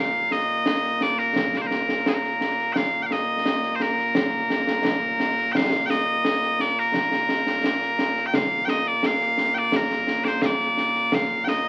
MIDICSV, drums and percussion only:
0, 0, Header, 1, 2, 480
1, 0, Start_track
1, 0, Key_signature, -2, "major"
1, 0, Tempo, 697674
1, 934, Time_signature, 2, 2, 24, 8
1, 8040, End_track
2, 0, Start_track
2, 0, Title_t, "Drums"
2, 214, Note_on_c, 9, 38, 63
2, 283, Note_off_c, 9, 38, 0
2, 452, Note_on_c, 9, 38, 92
2, 521, Note_off_c, 9, 38, 0
2, 574, Note_on_c, 9, 38, 24
2, 643, Note_off_c, 9, 38, 0
2, 693, Note_on_c, 9, 38, 72
2, 762, Note_off_c, 9, 38, 0
2, 815, Note_on_c, 9, 38, 28
2, 884, Note_off_c, 9, 38, 0
2, 935, Note_on_c, 9, 35, 54
2, 935, Note_on_c, 9, 38, 97
2, 1003, Note_off_c, 9, 35, 0
2, 1003, Note_off_c, 9, 38, 0
2, 1055, Note_on_c, 9, 38, 61
2, 1124, Note_off_c, 9, 38, 0
2, 1175, Note_on_c, 9, 38, 68
2, 1244, Note_off_c, 9, 38, 0
2, 1299, Note_on_c, 9, 38, 68
2, 1368, Note_off_c, 9, 38, 0
2, 1419, Note_on_c, 9, 38, 93
2, 1488, Note_off_c, 9, 38, 0
2, 1541, Note_on_c, 9, 38, 28
2, 1610, Note_off_c, 9, 38, 0
2, 1657, Note_on_c, 9, 38, 66
2, 1726, Note_off_c, 9, 38, 0
2, 1778, Note_on_c, 9, 38, 23
2, 1847, Note_off_c, 9, 38, 0
2, 1896, Note_on_c, 9, 35, 49
2, 1896, Note_on_c, 9, 38, 78
2, 1965, Note_off_c, 9, 35, 0
2, 1965, Note_off_c, 9, 38, 0
2, 2137, Note_on_c, 9, 38, 62
2, 2206, Note_off_c, 9, 38, 0
2, 2377, Note_on_c, 9, 38, 90
2, 2446, Note_off_c, 9, 38, 0
2, 2496, Note_on_c, 9, 38, 32
2, 2565, Note_off_c, 9, 38, 0
2, 2615, Note_on_c, 9, 38, 69
2, 2684, Note_off_c, 9, 38, 0
2, 2739, Note_on_c, 9, 38, 33
2, 2807, Note_off_c, 9, 38, 0
2, 2854, Note_on_c, 9, 35, 62
2, 2854, Note_on_c, 9, 38, 110
2, 2923, Note_off_c, 9, 35, 0
2, 2923, Note_off_c, 9, 38, 0
2, 3097, Note_on_c, 9, 38, 82
2, 3166, Note_off_c, 9, 38, 0
2, 3215, Note_on_c, 9, 38, 76
2, 3284, Note_off_c, 9, 38, 0
2, 3334, Note_on_c, 9, 35, 54
2, 3334, Note_on_c, 9, 38, 106
2, 3403, Note_off_c, 9, 35, 0
2, 3403, Note_off_c, 9, 38, 0
2, 3575, Note_on_c, 9, 38, 72
2, 3644, Note_off_c, 9, 38, 0
2, 3697, Note_on_c, 9, 38, 31
2, 3766, Note_off_c, 9, 38, 0
2, 3817, Note_on_c, 9, 35, 62
2, 3817, Note_on_c, 9, 38, 101
2, 3886, Note_off_c, 9, 35, 0
2, 3886, Note_off_c, 9, 38, 0
2, 4059, Note_on_c, 9, 38, 81
2, 4128, Note_off_c, 9, 38, 0
2, 4298, Note_on_c, 9, 38, 86
2, 4366, Note_off_c, 9, 38, 0
2, 4420, Note_on_c, 9, 38, 30
2, 4489, Note_off_c, 9, 38, 0
2, 4538, Note_on_c, 9, 38, 61
2, 4606, Note_off_c, 9, 38, 0
2, 4774, Note_on_c, 9, 35, 54
2, 4774, Note_on_c, 9, 38, 82
2, 4843, Note_off_c, 9, 35, 0
2, 4843, Note_off_c, 9, 38, 0
2, 4895, Note_on_c, 9, 38, 62
2, 4964, Note_off_c, 9, 38, 0
2, 5015, Note_on_c, 9, 38, 74
2, 5084, Note_off_c, 9, 38, 0
2, 5136, Note_on_c, 9, 38, 66
2, 5205, Note_off_c, 9, 38, 0
2, 5257, Note_on_c, 9, 38, 96
2, 5326, Note_off_c, 9, 38, 0
2, 5376, Note_on_c, 9, 38, 31
2, 5445, Note_off_c, 9, 38, 0
2, 5496, Note_on_c, 9, 38, 79
2, 5565, Note_off_c, 9, 38, 0
2, 5617, Note_on_c, 9, 38, 31
2, 5686, Note_off_c, 9, 38, 0
2, 5735, Note_on_c, 9, 35, 62
2, 5735, Note_on_c, 9, 38, 98
2, 5804, Note_off_c, 9, 35, 0
2, 5804, Note_off_c, 9, 38, 0
2, 5972, Note_on_c, 9, 38, 83
2, 6041, Note_off_c, 9, 38, 0
2, 6212, Note_on_c, 9, 38, 81
2, 6281, Note_off_c, 9, 38, 0
2, 6331, Note_on_c, 9, 38, 29
2, 6400, Note_off_c, 9, 38, 0
2, 6450, Note_on_c, 9, 38, 67
2, 6519, Note_off_c, 9, 38, 0
2, 6574, Note_on_c, 9, 38, 28
2, 6642, Note_off_c, 9, 38, 0
2, 6689, Note_on_c, 9, 35, 52
2, 6689, Note_on_c, 9, 38, 90
2, 6758, Note_off_c, 9, 35, 0
2, 6758, Note_off_c, 9, 38, 0
2, 6812, Note_on_c, 9, 38, 50
2, 6880, Note_off_c, 9, 38, 0
2, 6929, Note_on_c, 9, 38, 67
2, 6998, Note_off_c, 9, 38, 0
2, 7050, Note_on_c, 9, 38, 69
2, 7119, Note_off_c, 9, 38, 0
2, 7168, Note_on_c, 9, 35, 49
2, 7168, Note_on_c, 9, 38, 92
2, 7236, Note_off_c, 9, 35, 0
2, 7236, Note_off_c, 9, 38, 0
2, 7292, Note_on_c, 9, 38, 27
2, 7361, Note_off_c, 9, 38, 0
2, 7412, Note_on_c, 9, 38, 59
2, 7481, Note_off_c, 9, 38, 0
2, 7534, Note_on_c, 9, 38, 28
2, 7602, Note_off_c, 9, 38, 0
2, 7651, Note_on_c, 9, 35, 59
2, 7651, Note_on_c, 9, 38, 98
2, 7720, Note_off_c, 9, 35, 0
2, 7720, Note_off_c, 9, 38, 0
2, 7893, Note_on_c, 9, 38, 78
2, 7962, Note_off_c, 9, 38, 0
2, 8040, End_track
0, 0, End_of_file